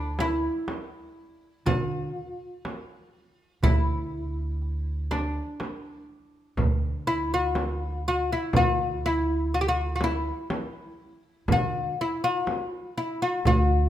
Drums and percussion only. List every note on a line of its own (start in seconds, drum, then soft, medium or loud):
0.19 darbuka tek medium
0.19 frame drum medium
0.68 darbuka tek medium
0.68 frame drum medium
1.66 frame drum medium
1.66 darbuka dum medium
2.16 darbuka ka soft
2.65 darbuka tek medium
2.65 frame drum medium
3.63 darbuka dum medium
3.63 frame drum medium
4.12 darbuka ka soft
4.62 darbuka ka soft
5.11 darbuka tek medium
5.11 frame drum medium
5.60 darbuka tek medium
5.60 frame drum medium
6.57 frame drum medium
6.57 darbuka dum medium
7.07 darbuka ka soft
7.55 darbuka tek medium
7.55 frame drum medium
8.53 frame drum medium
8.53 darbuka dum medium
9.03 darbuka ka soft
9.53 darbuka ka soft
10.01 darbuka tek medium
10.01 frame drum medium
10.50 darbuka tek medium
10.50 frame drum medium
11.48 frame drum medium
11.48 darbuka dum medium
11.98 darbuka ka soft
12.47 darbuka tek medium
12.47 frame drum medium
13.45 frame drum medium
13.45 darbuka dum medium